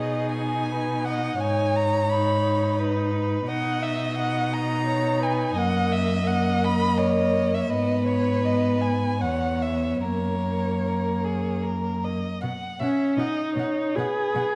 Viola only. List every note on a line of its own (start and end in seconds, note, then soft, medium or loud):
0.00 1.37 D#4 soft
1.39 2.07 D#4 soft
2.09 3.44 D#4 medium
3.47 4.14 D#4 medium
4.16 5.57 D#4 medium
5.56 6.25 A#3 medium
6.26 7.68 A#3 medium
7.71 8.43 B3 soft
8.43 9.20 B3 soft
9.23 10.04 B3 soft
10.02 12.22 A#3 soft
12.81 13.19 C#4 soft
13.17 13.97 D#4 medium
13.96 14.55 G#4 medium